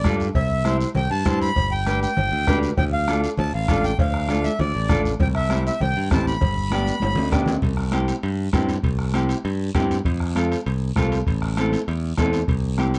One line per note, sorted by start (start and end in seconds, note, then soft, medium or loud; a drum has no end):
0.00 0.16 D5 medium
0.00 high conga medium
0.04 0.29 G2 medium
0.04 0.26 D4 medium
0.04 0.26 F4 medium
0.04 0.26 A4 medium
0.04 bombo low medium
0.04 bombo rim medium
0.04 cowbell medium
0.04 short guiro medium
0.20 short guiro medium
0.35 0.84 C2 medium
0.35 0.77 E5 medium
0.35 bombo low medium
0.35 cowbell loud
0.35 long guiro medium
0.64 0.86 E4 medium
0.64 0.86 G4 medium
0.64 0.87 C5 medium
0.64 bombo rim medium
0.64 cowbell medium
0.64 high conga medium
0.64 short guiro medium
0.81 short guiro medium
0.95 1.07 C2 medium
0.95 1.10 G5 medium
0.95 cowbell medium
0.95 low conga medium
0.95 long guiro medium
1.11 1.23 G2 medium
1.11 1.39 A5 loud
1.25 1.50 G2 medium
1.25 1.47 E4 medium
1.25 1.47 G4 medium
1.25 1.47 C5 medium
1.25 bombo low medium
1.25 bombo rim medium
1.25 cowbell medium
1.25 high conga medium
1.25 short guiro medium
1.42 1.73 B5 loud
1.42 short guiro medium
1.56 2.05 G1 medium
1.56 bombo low medium
1.56 cowbell loud
1.56 long guiro medium
1.72 2.00 G5 medium
1.86 2.08 D4 medium
1.86 2.08 G4 medium
1.86 2.08 B4 medium
1.86 bombo rim medium
1.86 cowbell medium
1.86 high conga medium
1.86 short guiro medium
2.02 2.59 G5 loud
2.02 high conga medium
2.02 short guiro medium
2.17 2.29 G1 loud
2.17 cowbell medium
2.17 low conga medium
2.17 long guiro medium
2.32 2.44 D2 medium
2.47 2.72 D2 medium
2.47 2.69 D4 medium
2.47 2.69 G4 medium
2.47 2.69 B4 loud
2.47 bombo low medium
2.47 bombo rim medium
2.47 cowbell medium
2.47 high conga medium
2.47 low timbale medium
2.47 short guiro medium
2.63 short guiro medium
2.77 3.26 D2 medium
2.77 2.85 G5 medium
2.77 bombo low medium
2.77 cowbell loud
2.77 low conga medium
2.77 long guiro medium
2.93 3.21 F5 medium
3.08 3.29 D4 medium
3.08 3.29 F4 medium
3.08 3.30 A4 medium
3.08 bombo rim medium
3.08 cowbell medium
3.08 high conga medium
3.08 short guiro medium
3.22 3.29 F5 medium
3.22 short guiro medium
3.37 3.51 D2 loud
3.37 3.53 A5 medium
3.37 cowbell medium
3.37 low conga medium
3.37 long guiro medium
3.54 3.66 A1 medium
3.54 3.85 F5 medium
3.68 3.93 A1 medium
3.68 3.90 D4 medium
3.68 3.90 F4 medium
3.68 3.90 A4 medium
3.68 bombo low medium
3.68 bombo rim medium
3.68 cowbell medium
3.68 high conga medium
3.68 short guiro medium
3.84 3.98 G5 medium
3.84 short guiro medium
3.99 4.47 D2 medium
3.99 4.46 F5 medium
3.99 bombo low medium
3.99 cowbell loud
3.99 long guiro medium
4.14 bombo rim medium
4.28 4.50 D4 medium
4.28 4.50 F4 medium
4.28 4.50 A4 medium
4.28 bombo rim medium
4.28 cowbell medium
4.28 high conga medium
4.28 short guiro medium
4.44 4.60 E5 medium
4.44 high conga medium
4.44 short guiro medium
4.59 4.72 D2 medium
4.59 5.02 D5 medium
4.59 cowbell medium
4.59 low conga medium
4.59 long guiro medium
4.75 4.87 A1 medium
4.89 5.14 A1 medium
4.89 5.10 D4 medium
4.89 5.11 F4 medium
4.89 5.11 A4 medium
4.89 bombo low medium
4.89 bombo rim medium
4.89 cowbell medium
4.89 high conga medium
4.89 low conga medium
4.89 short guiro medium
5.05 short guiro medium
5.20 5.68 C2 loud
5.20 5.28 G5 medium
5.20 bombo low medium
5.20 cowbell loud
5.20 low conga medium
5.20 long guiro medium
5.35 5.63 E5 medium
5.35 bombo rim medium
5.49 5.71 C4 medium
5.49 5.71 E4 medium
5.49 5.72 G4 medium
5.49 bombo rim medium
5.49 cowbell medium
5.49 high conga medium
5.49 short guiro medium
5.67 5.80 E5 medium
5.67 short guiro medium
5.80 5.93 C2 medium
5.80 6.09 G5 medium
5.80 cowbell medium
5.80 low conga medium
5.80 long guiro medium
5.97 6.08 G2 medium
6.11 6.35 A1 medium
6.11 6.32 C4 medium
6.11 6.32 E4 medium
6.11 6.33 G4 medium
6.11 6.26 A5 medium
6.11 bombo low medium
6.11 bombo rim medium
6.11 cowbell medium
6.11 high conga medium
6.11 low conga medium
6.11 low timbale medium
6.11 short guiro medium
6.27 7.29 B5 medium
6.27 short guiro medium
6.41 6.90 G1 loud
6.41 bombo low medium
6.41 cowbell loud
6.41 low conga medium
6.41 long guiro medium
6.71 6.93 B3 medium
6.71 6.93 D4 medium
6.71 6.93 G4 medium
6.71 bombo rim medium
6.71 cowbell medium
6.71 high conga medium
6.71 short guiro medium
6.86 high conga medium
6.86 short guiro medium
7.00 7.14 G1 loud
7.00 cowbell medium
7.00 high conga loud
7.00 high timbale medium
7.00 long guiro medium
7.16 7.30 D2 medium
7.16 low conga medium
7.16 low timbale medium
7.31 7.57 D2 medium
7.31 7.53 B3 medium
7.31 7.53 D4 medium
7.31 7.53 G4 loud
7.31 bombo low medium
7.31 bombo rim medium
7.31 cowbell medium
7.31 low timbale medium
7.31 short guiro medium
7.46 low conga medium
7.46 low timbale loud
7.46 short guiro medium
7.62 8.11 C2 medium
7.62 bombo low medium
7.62 high timbale medium
7.62 long guiro medium
7.77 bombo rim medium
7.92 8.14 C4 medium
7.92 8.14 E4 medium
7.92 8.14 G4 medium
7.92 bombo rim medium
7.92 high conga medium
7.92 high timbale medium
7.92 short guiro medium
8.08 high timbale medium
8.08 short guiro medium
8.23 8.48 G2 medium
8.23 high timbale medium
8.23 long guiro medium
8.53 8.78 G2 medium
8.53 8.75 C4 medium
8.53 8.75 E4 medium
8.53 8.75 G4 medium
8.53 bombo low medium
8.53 bombo rim medium
8.53 high conga medium
8.53 high timbale medium
8.53 low timbale medium
8.53 short guiro medium
8.69 high timbale medium
8.69 short guiro medium
8.83 9.32 C2 medium
8.83 bombo low medium
8.83 high timbale medium
8.83 long guiro medium
8.99 bombo rim medium
9.13 9.36 C4 medium
9.13 9.36 E4 medium
9.13 9.36 G4 medium
9.13 bombo rim medium
9.13 high conga medium
9.13 high timbale medium
9.13 short guiro medium
9.29 high timbale medium
9.29 short guiro medium
9.45 9.69 G2 medium
9.45 high timbale medium
9.45 long guiro medium
9.75 9.99 G2 medium
9.75 9.96 C4 medium
9.75 9.96 E4 medium
9.75 9.96 G4 loud
9.75 bombo low medium
9.75 bombo rim medium
9.75 high conga medium
9.75 high timbale medium
9.75 low timbale medium
9.75 short guiro medium
9.91 high timbale medium
9.91 short guiro medium
10.05 10.54 F2 medium
10.05 bombo low medium
10.05 high timbale medium
10.05 long guiro medium
10.20 bombo rim medium
10.35 10.57 C4 medium
10.35 10.57 F4 medium
10.35 10.57 A4 medium
10.35 bombo rim medium
10.35 high conga medium
10.35 high timbale medium
10.35 short guiro medium
10.52 high timbale medium
10.52 short guiro medium
10.66 10.91 C2 medium
10.66 high timbale medium
10.66 long guiro medium
10.96 11.21 C2 medium
10.96 11.18 C4 medium
10.96 11.18 F4 medium
10.96 11.18 A4 medium
10.96 bombo low medium
10.96 bombo rim medium
10.96 high conga medium
10.96 high timbale medium
10.96 short guiro medium
11.12 high timbale medium
11.12 short guiro medium
11.27 11.75 A1 medium
11.27 bombo low medium
11.27 high timbale medium
11.27 long guiro medium
11.42 bombo rim medium
11.57 11.79 C4 medium
11.57 11.79 E4 medium
11.57 11.79 A4 medium
11.57 bombo rim medium
11.57 high conga medium
11.57 high timbale medium
11.57 short guiro medium
11.72 high conga medium
11.72 high timbale medium
11.72 short guiro medium
11.88 12.12 E2 medium
11.88 high timbale medium
11.88 long guiro medium
12.17 12.42 E2 medium
12.17 12.40 C4 medium
12.17 12.40 E4 medium
12.17 12.40 A4 loud
12.17 bombo low medium
12.17 bombo rim medium
12.17 high conga medium
12.17 high timbale medium
12.17 low timbale medium
12.17 short guiro medium
12.33 high timbale medium
12.33 short guiro medium
12.48 12.97 C2 medium
12.48 bombo low medium
12.48 high timbale medium
12.48 long guiro medium
12.78 12.99 C4 medium
12.78 12.99 E4 medium
12.78 12.99 G4 medium
12.78 bombo rim medium
12.78 high conga medium
12.78 high timbale medium
12.78 short guiro medium
12.94 high timbale medium
12.94 short guiro medium